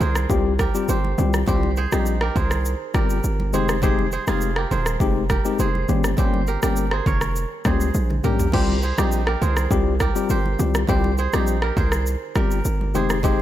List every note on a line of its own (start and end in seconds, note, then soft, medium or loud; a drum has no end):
0.00 0.26 C2 medium
0.00 1.20 D#4 medium
0.00 0.66 G#4 medium
0.00 0.59 A#4 medium
0.00 0.89 C5 medium
0.00 high conga medium
0.00 low conga medium
0.00 shaker soft
0.15 cross-stick medium
0.15 shaker medium
0.30 0.69 C2 loud
0.30 0.52 G3 medium
0.30 0.52 C4 medium
0.30 0.52 F4 medium
0.30 0.52 G4 medium
0.30 kick medium
0.30 shaker medium
0.59 0.90 G4 medium
0.59 1.87 A#4 medium
0.59 kick medium
0.59 cross-stick medium
0.59 high conga medium
0.59 shaker medium
0.74 0.96 G3 medium
0.74 0.96 C4 medium
0.74 0.97 F4 medium
0.74 0.97 G4 medium
0.74 shaker medium
0.89 1.14 G1 medium
0.89 1.48 G4 medium
0.89 1.48 C5 medium
0.89 shaker medium
1.04 high conga medium
1.18 1.44 C2 medium
1.18 1.40 G3 medium
1.18 1.40 C4 medium
1.18 1.41 F4 medium
1.18 1.41 G4 medium
1.18 low conga medium
1.18 shaker medium
1.34 cross-stick medium
1.34 shaker medium
1.46 1.87 C2 loud
1.46 1.70 G3 medium
1.46 1.70 C4 medium
1.46 1.70 F4 medium
1.46 1.70 G4 loud
1.46 1.84 G4 medium
1.46 1.77 C5 medium
1.46 kick loud
1.46 low conga medium
1.46 shaker medium
1.63 high conga medium
1.77 1.99 G#4 medium
1.77 2.36 C5 medium
1.77 shaker soft
1.92 2.30 A#1 medium
1.92 2.14 G3 medium
1.92 2.14 C4 medium
1.92 3.56 D#4 medium
1.92 2.14 F4 medium
1.92 2.22 G4 medium
1.92 2.14 G4 medium
1.92 cross-stick medium
1.92 high conga medium
1.92 shaker medium
2.06 shaker medium
2.21 2.43 G4 medium
2.21 2.95 A#4 medium
2.21 cross-stick medium
2.36 2.75 C2 medium
2.36 3.02 G#4 medium
2.36 3.53 C5 medium
2.36 kick medium
2.36 high conga medium
2.36 low conga medium
2.36 shaker soft
2.51 cross-stick medium
2.51 shaker medium
2.65 shaker medium
2.94 3.20 G1 loud
2.94 3.17 G3 medium
2.94 3.17 C4 medium
2.94 3.17 F4 medium
2.94 3.17 G4 medium
2.94 3.61 G4 medium
2.94 4.22 A#4 medium
2.94 kick medium
2.94 cross-stick medium
2.94 high conga medium
2.94 shaker medium
3.10 shaker medium
3.24 3.55 G1 medium
3.24 shaker medium
3.40 high conga medium
3.53 4.18 F1 loud
3.53 3.76 G#3 medium
3.53 3.76 C4 medium
3.53 3.76 D#4 medium
3.53 3.76 G4 medium
3.53 3.84 G#4 medium
3.53 3.83 C5 medium
3.53 low conga medium
3.53 shaker medium
3.69 cross-stick medium
3.69 shaker medium
3.82 4.05 G#3 medium
3.82 4.05 C4 medium
3.82 4.05 D#4 medium
3.82 4.05 G4 loud
3.82 4.13 G#4 medium
3.82 4.12 C5 medium
3.82 kick loud
3.82 low conga medium
3.82 shaker medium
3.99 high conga medium
4.12 4.27 G#4 medium
4.12 4.71 C5 medium
4.12 shaker soft
4.27 4.66 F1 medium
4.27 4.49 G#3 medium
4.27 4.49 C4 medium
4.27 4.49 D#4 medium
4.27 5.80 F4 medium
4.27 4.49 G4 medium
4.27 4.64 G#4 medium
4.27 cross-stick medium
4.27 high conga medium
4.27 shaker medium
4.41 shaker medium
4.56 4.78 G4 medium
4.56 5.30 A#4 medium
4.56 cross-stick medium
4.71 4.97 D#1 medium
4.71 5.37 G#4 medium
4.71 5.59 C5 medium
4.71 high conga medium
4.71 low conga medium
4.71 shaker soft
4.86 cross-stick medium
4.86 shaker medium
5.00 5.39 F1 loud
5.00 5.23 G#3 medium
5.00 5.23 C4 medium
5.00 5.23 D#4 medium
5.00 5.23 G4 loud
5.00 kick medium
5.00 shaker medium
5.30 5.66 G4 medium
5.30 6.47 A#4 medium
5.30 kick medium
5.30 cross-stick medium
5.30 high conga medium
5.30 shaker medium
5.45 5.67 G#3 medium
5.45 5.67 C4 medium
5.45 5.67 D#4 medium
5.45 5.67 G4 medium
5.45 shaker medium
5.59 5.85 F1 loud
5.59 6.25 G#4 medium
5.59 6.18 C5 medium
5.59 shaker medium
5.75 high conga medium
5.88 6.14 G1 loud
5.88 6.11 G3 medium
5.88 6.11 A#3 medium
5.88 6.11 C#4 medium
5.88 6.11 G4 medium
5.88 low conga medium
5.88 shaker medium
6.04 cross-stick medium
6.04 shaker medium
6.17 6.57 G1 loud
6.17 6.40 G3 medium
6.17 6.40 A#3 medium
6.17 6.40 C#4 medium
6.17 6.41 G4 loud
6.17 6.48 G4 medium
6.17 6.92 C5 medium
6.17 kick loud
6.17 low conga medium
6.17 shaker medium
6.34 high conga medium
6.47 6.63 G4 medium
6.47 6.63 A#4 medium
6.47 shaker soft
6.62 7.01 G1 medium
6.62 6.84 G3 medium
6.62 6.84 A#3 medium
6.62 6.85 C#4 medium
6.62 6.85 G4 medium
6.62 6.99 G4 medium
6.62 7.07 A#4 medium
6.62 cross-stick medium
6.62 high conga medium
6.62 shaker medium
6.76 shaker medium
6.91 7.66 G#4 medium
6.91 7.12 C5 medium
6.91 cross-stick medium
7.06 7.45 F1 medium
7.06 8.24 A#4 medium
7.06 7.72 C#5 medium
7.06 kick medium
7.06 high conga medium
7.06 low conga medium
7.06 shaker soft
7.21 cross-stick medium
7.21 shaker medium
7.36 shaker medium
7.65 7.91 C#2 medium
7.65 7.87 G3 medium
7.65 7.88 A#3 medium
7.65 7.88 C#4 medium
7.65 7.88 G4 medium
7.65 8.31 G#4 medium
7.65 8.53 C5 medium
7.65 kick medium
7.65 cross-stick medium
7.65 high conga medium
7.65 shaker medium
7.80 shaker medium
7.94 8.20 A#1 medium
7.94 high tom medium
7.94 shaker medium
8.10 mid tom medium
8.10 high conga medium
8.24 8.50 A#1 medium
8.24 8.46 G3 medium
8.24 8.46 A#3 medium
8.24 8.46 C#4 medium
8.24 8.47 G4 medium
8.24 8.54 G4 medium
8.24 9.27 A#4 medium
8.24 mid tom medium
8.24 high conga medium
8.24 shaker medium
8.39 floor tom medium
8.39 shaker medium
8.52 8.93 C2 loud
8.52 8.76 G3 medium
8.52 8.76 C4 medium
8.52 8.76 F4 medium
8.52 8.76 G4 loud
8.52 8.90 G4 medium
8.52 8.83 C5 medium
8.52 kick loud
8.52 crash medium
8.52 low conga medium
8.69 high conga medium
8.82 9.04 G#4 medium
8.82 9.42 C5 medium
8.82 shaker soft
8.98 9.36 A#1 medium
8.98 9.20 G3 medium
8.98 9.20 C4 medium
8.98 10.61 D#4 medium
8.98 9.20 F4 medium
8.98 9.28 G4 medium
8.98 9.20 G4 medium
8.98 cross-stick medium
8.98 high conga medium
8.98 shaker medium
9.12 shaker medium
9.27 9.49 G4 medium
9.27 10.00 A#4 medium
9.27 cross-stick medium
9.42 9.67 C2 medium
9.42 10.08 G#4 medium
9.42 10.30 C5 medium
9.42 high conga medium
9.42 low conga medium
9.42 shaker soft
9.57 cross-stick medium
9.57 shaker medium
9.71 10.10 C2 loud
9.71 9.93 G3 medium
9.71 9.93 C4 medium
9.71 9.93 F4 medium
9.71 9.94 G4 loud
9.71 kick medium
9.71 shaker medium
10.00 10.31 G4 medium
10.00 11.28 A#4 medium
10.00 kick medium
10.00 cross-stick medium
10.00 high conga medium
10.00 shaker medium
10.15 10.37 G3 medium
10.15 10.37 C4 medium
10.15 10.38 F4 medium
10.15 10.38 G4 medium
10.15 shaker medium
10.30 10.56 G1 medium
10.30 10.90 G4 medium
10.30 10.89 C5 medium
10.30 shaker medium
10.46 high conga medium
10.59 10.85 C2 medium
10.59 10.82 G3 medium
10.59 10.82 C4 medium
10.59 10.82 F4 medium
10.59 10.82 G4 medium
10.59 low conga medium
10.59 shaker medium
10.75 cross-stick medium
10.75 shaker medium
10.87 11.28 C2 loud
10.87 11.11 G3 medium
10.87 11.11 C4 medium
10.87 11.11 F4 medium
10.87 11.11 G4 loud
10.87 11.25 G4 medium
10.87 11.18 C5 medium
10.87 kick loud
10.87 low conga medium
10.87 shaker medium
11.04 high conga medium
11.18 11.40 G#4 medium
11.18 11.77 C5 medium
11.18 shaker soft
11.33 11.72 A#1 medium
11.33 11.55 G3 medium
11.33 11.55 C4 medium
11.33 12.97 D#4 medium
11.33 11.55 F4 medium
11.33 11.64 G4 medium
11.33 11.55 G4 medium
11.33 cross-stick medium
11.33 high conga medium
11.33 shaker medium
11.47 shaker medium
11.62 11.84 G4 medium
11.62 12.36 A#4 medium
11.62 cross-stick medium
11.77 12.16 C2 medium
11.77 12.43 G#4 medium
11.77 12.95 C5 medium
11.77 kick medium
11.77 high conga medium
11.77 low conga medium
11.77 shaker soft
11.92 cross-stick medium
11.92 shaker medium
12.06 shaker medium
12.35 12.61 G1 medium
12.35 12.58 G3 medium
12.35 12.58 C4 medium
12.35 12.58 F4 medium
12.35 12.58 G4 medium
12.35 13.02 G4 medium
12.35 13.42 A#4 medium
12.35 kick medium
12.35 cross-stick medium
12.35 high conga medium
12.35 shaker medium
12.51 shaker medium
12.65 12.96 G1 medium
12.65 shaker medium
12.81 high conga medium
12.94 13.42 F1 loud
12.94 13.17 G#3 medium
12.94 13.17 C4 medium
12.94 13.17 D#4 medium
12.94 13.17 G4 medium
12.94 13.25 G#4 medium
12.94 13.24 C5 medium
12.94 low conga medium
12.94 shaker medium
13.10 cross-stick medium
13.10 shaker medium
13.23 13.42 G#3 medium
13.23 13.42 C4 medium
13.23 13.42 D#4 medium
13.23 13.42 G4 loud
13.23 13.42 G#4 medium
13.23 13.42 C5 medium
13.23 kick loud
13.23 low conga medium
13.23 shaker medium